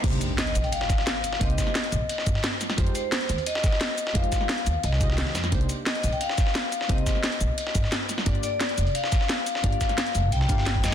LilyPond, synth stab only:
\new Staff \with { instrumentName = "Synth stab" } { \time 4/4 \key c \minor \tempo 4 = 175 <bes d' ees' g' c''>2~ <bes d' ees' g' c''>8 r4. | <bes c' ees' g' c''>2~ <bes c' ees' g' c''>8 r4. | <aes ees' f' g' c''>2~ <aes ees' f' g' c''>8 r4. | <aes ees' f' g' c''>2~ <aes ees' f' g' c''>8 <aes ees' f' g' ees''>4. |
<bes d' ees' g' c''>2~ <bes d' ees' g' c''>8 r4. | <bes c' ees' g' c''>2~ <bes c' ees' g' c''>8 r4. | <bes d' f' g' d''>2~ <bes d' f' g' d''>8 r4. | <bes d' f' g' d''>2~ <bes d' f' g' d''>8 <bes d' f' g' f''>4. | }